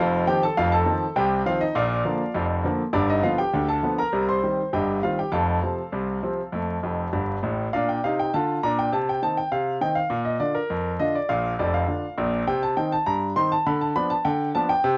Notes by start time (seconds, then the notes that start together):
Already playing: F1 F2 F5
0.00 F4 C5
0.27 D#3 F3 C4 G4 G5
0.43 A4 A5
0.57 F1 F2 F4 F5
0.72 A4 A5
0.86 D#3 F3 C4
1.16 C2 C3 G4 G5
1.46 D#3 F3 C4 F4 F5
1.61 D#4 D#5
1.75 A#1 A#2 F4 D5 F5
2.05 D3 F3 A#3
2.34 F1 F2
2.64 D3 F3 A#3
2.93 G1 G2 D4 D5
3.10 D#4 D#5
3.23 D3 F3 B3 F4 F5
3.38 G4 G5
3.53 D2 D3
3.68 A4 A5
3.83 D3 F3 B3
3.98 A#4 A#5
4.12 C2 C3
4.28 C5 C6
4.43 D#3 G3 C4
4.73 G1 G2 G4 D#5 G5
5.03 D#3 G3 C4 F4 F5
5.19 G4 G5
5.32 F1 F2 A4 F5 A5
5.63 C3 F3 C4
5.92 C2 C3
6.23 C3 F3 C4
6.52 F2 A3
6.83 F1 F2
7.13 G1 G2
7.43 A1 A2
7.73 A#2 D4 F5
7.89 G5
8.04 C3 D#4 F5
8.19 G5
8.34 D3 F4 A5
8.63 A#2 D4 A#5
8.79 G5
8.92 C3 A5
9.09 G5
9.22 D#3 C4 D#4 A5
9.37 G5
9.52 C3 F5
9.81 D#3 C4 D#4 G5
9.95 F5
10.10 A#2
10.25 D#5
10.40 D3 D4 F4 D5
10.55 A#4
10.70 F2
11.00 D3 D4 F4 D#5
11.15 D5
11.29 A#1 A#2 F5
11.59 F1 F2 D5
11.74 F5
11.88 D3 D4 F4
12.18 A#1 A#2
12.47 C3 G5
12.63 A5
12.77 D#3 C4 D#4 G5
12.92 A5
13.06 G2 A#5
13.36 D#3 C4 D#4 C6
13.52 A5
13.66 D3 B5
13.81 A5
13.96 F3 B3 D4 B5
14.10 A5
14.25 D3 G5
14.55 F3 B3 D4 A5
14.69 G5
14.84 C3